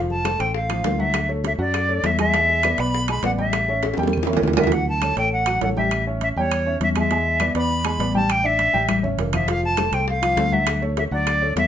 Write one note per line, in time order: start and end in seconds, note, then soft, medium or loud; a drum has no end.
0.00 0.35 F1 medium
0.00 0.20 F3 medium
0.00 0.20 F4 medium
0.00 0.20 F5 medium
0.10 0.42 A5 medium
0.10 high bongo soft
0.10 high conga soft
0.24 0.37 A3 medium
0.24 0.37 A4 medium
0.24 0.38 C5 medium
0.24 high bongo medium
0.24 high conga medium
0.24 high timbale medium
0.24 claves medium
0.39 0.82 A1 medium
0.39 0.64 A3 medium
0.39 0.64 A4 medium
0.39 0.65 C5 medium
0.39 0.55 G5 medium
0.39 high bongo soft
0.39 high timbale medium
0.54 1.02 F5 medium
0.54 high bongo medium
0.69 0.82 F3 medium
0.69 0.82 F4 medium
0.69 0.83 F5 medium
0.69 high bongo soft
0.69 high conga soft
0.69 high timbale medium
0.69 claves medium
0.84 1.54 D2 medium
0.84 0.97 A3 medium
0.84 0.97 A4 medium
0.84 0.98 C5 medium
0.84 high bongo medium
0.84 low bongo medium
0.84 high conga medium
0.84 high timbale medium
0.84 low timbale medium
0.99 1.24 F#3 medium
0.99 1.24 F#4 medium
0.99 1.30 E5 medium
0.99 1.24 F#5 medium
0.99 high conga medium
1.14 high bongo medium
1.14 high conga soft
1.14 high timbale medium
1.14 claves medium
1.29 1.54 A3 medium
1.29 1.54 A4 medium
1.29 1.54 C#5 medium
1.29 high bongo soft
1.29 high conga soft
1.44 1.53 E5 medium
1.44 high bongo medium
1.44 high conga medium
1.44 high timbale medium
1.58 2.01 F#2 medium
1.58 1.83 F#3 medium
1.58 1.84 F#4 medium
1.58 2.08 D5 medium
1.58 1.84 F#5 medium
1.58 high conga soft
1.74 high bongo medium
1.74 high conga soft
1.74 high timbale medium
1.74 claves medium
1.88 2.13 A3 medium
1.88 2.13 A4 medium
1.88 2.14 C#5 medium
1.88 high bongo soft
1.88 high conga soft
2.04 2.73 E2 medium
2.04 2.20 E5 medium
2.04 high bongo medium
2.04 low bongo medium
2.04 high conga medium
2.04 high timbale medium
2.19 2.31 G#3 medium
2.19 2.31 G#4 medium
2.19 2.82 E5 loud
2.19 2.32 G#5 medium
2.19 high bongo soft
2.19 high conga medium
2.19 high timbale medium
2.19 claves medium
2.33 2.58 G#3 medium
2.33 2.58 G#4 medium
2.33 2.59 G#5 medium
2.33 high bongo medium
2.33 high conga soft
2.33 high timbale medium
2.49 high bongo soft
2.49 high conga soft
2.63 2.76 B3 medium
2.63 2.76 B4 medium
2.63 2.77 D5 medium
2.63 high bongo medium
2.63 high conga medium
2.63 high timbale medium
2.63 claves medium
2.78 3.20 B1 medium
2.78 3.03 B3 medium
2.78 3.04 B4 medium
2.78 3.04 D5 medium
2.78 3.09 B5 loud
2.78 high bongo soft
2.78 high timbale medium
2.94 high bongo medium
2.94 high conga soft
3.08 3.21 G#3 medium
3.08 3.21 G#4 medium
3.08 3.21 G#5 medium
3.08 3.23 B5 medium
3.08 high bongo soft
3.08 high conga soft
3.08 high timbale medium
3.08 claves medium
3.23 3.92 A1 medium
3.23 3.36 B3 medium
3.23 3.36 B4 medium
3.23 3.36 D5 medium
3.23 3.31 F#5 medium
3.23 high bongo medium
3.23 low bongo medium
3.23 high conga medium
3.23 high timbale medium
3.38 3.62 G3 medium
3.38 3.63 G4 medium
3.38 3.95 E5 medium
3.38 3.63 G5 medium
3.38 high conga medium
3.53 high bongo medium
3.53 high conga soft
3.53 high timbale medium
3.53 claves medium
3.68 3.93 C#4 medium
3.68 3.93 C#5 medium
3.68 3.93 E5 medium
3.68 high bongo soft
3.68 high conga soft
3.83 high bongo loud
3.83 high conga medium
3.83 high timbale medium
3.94 high bongo medium
3.94 high conga medium
3.94 high timbale medium
3.98 4.39 E2 medium
3.98 4.23 G3 medium
3.98 4.23 G4 medium
3.98 4.23 G5 medium
4.03 high bongo medium
4.07 high conga medium
4.07 high timbale medium
4.13 claves medium
4.17 low conga loud
4.23 low bongo medium
4.27 4.52 C#4 medium
4.27 4.52 C#5 medium
4.27 4.53 E5 medium
4.27 high timbale medium
4.33 low bongo medium
4.33 low timbale loud
4.37 low conga medium
4.42 5.11 D2 medium
4.42 low bongo loud
4.48 low conga medium
4.48 low timbale medium
4.53 4.70 F#3 medium
4.53 4.70 F#4 medium
4.53 low bongo medium
4.53 low timbale medium
4.58 4.76 E5 medium
4.58 4.70 F#5 medium
4.58 low conga medium
4.58 claves medium
4.64 low bongo medium
4.64 low timbale medium
4.68 low conga medium
4.72 4.97 F#3 medium
4.72 4.97 F#4 medium
4.72 4.97 F#5 medium
4.72 4.88 F#5 medium
4.72 high conga soft
4.72 high timbale medium
4.87 5.16 A5 medium
4.87 high conga soft
5.02 5.14 A3 medium
5.02 5.15 A4 medium
5.02 5.15 C#5 medium
5.02 high conga medium
5.02 high timbale medium
5.02 claves medium
5.17 5.58 A1 medium
5.17 5.41 A3 medium
5.17 5.42 A4 medium
5.17 5.41 C#5 medium
5.17 5.32 G5 medium
5.17 high conga soft
5.17 high timbale medium
5.32 5.60 F#5 medium
5.32 high conga soft
5.46 5.59 F#3 medium
5.46 5.59 F#4 medium
5.46 5.59 F#5 medium
5.46 high conga soft
5.46 high timbale medium
5.46 claves medium
5.61 6.31 A1 medium
5.61 5.73 A3 medium
5.61 5.74 A4 medium
5.61 5.74 C#5 medium
5.61 5.69 F#5 medium
5.61 high conga medium
5.61 high timbale medium
5.61 low timbale medium
5.77 6.01 G3 medium
5.77 6.01 G4 medium
5.77 6.05 E5 medium
5.77 6.01 G5 medium
5.77 high conga medium
5.91 high conga soft
5.91 high timbale medium
5.91 claves medium
6.06 6.31 C#4 medium
6.06 6.31 C#5 medium
6.06 6.31 E5 medium
6.06 high conga soft
6.21 6.29 E5 medium
6.21 high conga medium
6.21 high timbale medium
6.36 6.78 E2 medium
6.36 6.61 G3 medium
6.36 6.61 G4 medium
6.36 6.79 C#5 medium
6.36 6.61 G5 medium
6.36 high conga soft
6.51 high conga soft
6.51 high timbale medium
6.51 claves medium
6.66 6.91 C#4 medium
6.66 6.91 C#5 medium
6.66 6.91 E5 medium
6.66 high conga soft
6.81 7.50 E2 medium
6.81 6.89 E5 medium
6.81 high conga medium
6.81 high timbale medium
6.96 7.08 G#3 medium
6.96 7.08 G#4 medium
6.96 7.53 E5 medium
6.96 7.09 G#5 medium
6.96 high conga medium
6.96 high timbale medium
6.96 claves medium
7.11 7.35 G#3 medium
7.11 7.35 G#4 medium
7.11 7.36 G#5 medium
7.11 high timbale medium
7.26 high conga soft
7.40 7.53 B3 medium
7.40 7.53 B4 medium
7.40 7.53 D5 medium
7.40 high conga medium
7.40 high timbale medium
7.40 claves medium
7.55 7.96 E2 medium
7.55 7.80 B3 medium
7.55 7.80 B4 medium
7.55 7.80 D5 medium
7.55 7.84 B5 loud
7.55 high conga soft
7.55 high timbale medium
7.70 high conga soft
7.85 7.97 G#3 medium
7.85 7.97 G#4 medium
7.85 7.97 G#5 medium
7.85 8.13 B5 medium
7.85 high conga soft
7.85 high timbale medium
7.85 claves medium
7.99 8.68 A1 medium
7.99 8.12 B3 medium
7.99 8.12 B4 medium
7.99 8.12 D5 medium
7.99 high conga medium
7.99 high timbale medium
8.14 8.39 G3 medium
8.14 8.39 G4 medium
8.14 8.39 G5 medium
8.14 8.33 A5 medium
8.14 high conga medium
8.29 8.47 G5 loud
8.29 high conga soft
8.29 high timbale medium
8.29 claves medium
8.44 8.69 D4 medium
8.44 8.69 D5 medium
8.44 8.69 E5 medium
8.44 9.07 E5 loud
8.44 high conga soft
8.59 high conga medium
8.59 high timbale medium
8.73 9.16 A1 medium
8.73 8.98 G3 medium
8.73 8.98 G4 medium
8.73 8.99 G5 medium
8.73 high conga medium
8.89 high conga loud
8.89 high timbale medium
8.89 claves medium
9.03 9.28 C#4 medium
9.03 9.28 C#5 medium
9.03 9.28 E5 medium
9.03 low conga medium
9.18 9.87 F1 medium
9.18 low conga medium
9.18 high timbale medium
9.18 low timbale medium
9.33 9.45 F3 medium
9.33 9.45 F4 medium
9.33 9.48 E5 medium
9.33 9.46 F5 medium
9.33 low conga medium
9.33 high timbale medium
9.33 claves medium
9.48 9.73 F3 medium
9.48 9.73 F4 medium
9.48 9.73 F5 medium
9.48 9.63 F5 medium
9.48 high bongo medium
9.48 high conga soft
9.48 high timbale medium
9.63 9.95 A5 loud
9.63 high bongo soft
9.63 high conga soft
9.77 9.90 A3 medium
9.77 9.90 A4 medium
9.77 9.90 C5 medium
9.77 high bongo medium
9.77 high conga medium
9.77 high timbale medium
9.77 claves medium
9.92 10.34 C2 medium
9.92 10.17 A3 medium
9.92 10.18 A4 medium
9.92 10.18 C5 medium
9.92 10.08 G5 medium
9.92 high bongo soft
9.92 high conga soft
9.92 high timbale medium
10.07 10.55 F5 medium
10.07 high bongo medium
10.07 high conga soft
10.22 10.34 F3 medium
10.22 10.35 F4 medium
10.22 10.35 F5 medium
10.22 high bongo soft
10.22 high conga soft
10.22 high timbale medium
10.22 claves medium
10.37 11.06 D2 medium
10.37 10.49 A3 medium
10.37 10.50 A4 medium
10.37 10.50 C5 medium
10.37 high bongo medium
10.37 low bongo medium
10.37 high conga medium
10.37 high timbale medium
10.52 10.77 F#3 medium
10.52 10.77 F#4 medium
10.52 10.83 E5 medium
10.52 10.77 F#5 medium
10.52 high conga medium
10.67 high bongo medium
10.67 high conga soft
10.67 high timbale medium
10.67 claves medium
10.82 11.06 A3 medium
10.82 11.07 A4 medium
10.82 11.07 C#5 medium
10.82 high bongo soft
10.82 high conga soft
10.97 11.04 E5 medium
10.97 high bongo medium
10.97 high conga medium
10.97 high timbale medium
11.11 11.53 D2 medium
11.11 11.36 F#3 medium
11.11 11.36 F#4 medium
11.11 11.54 D5 loud
11.11 11.36 F#5 medium
11.11 high conga soft
11.27 high bongo medium
11.27 high conga soft
11.27 high timbale medium
11.27 claves medium
11.42 11.66 A3 medium
11.42 11.66 A4 medium
11.42 11.66 C#5 medium
11.42 high bongo soft
11.42 high conga soft
11.56 11.67 E2 medium
11.56 11.67 E5 medium
11.56 high bongo medium
11.56 low bongo medium
11.56 high conga medium
11.56 high timbale medium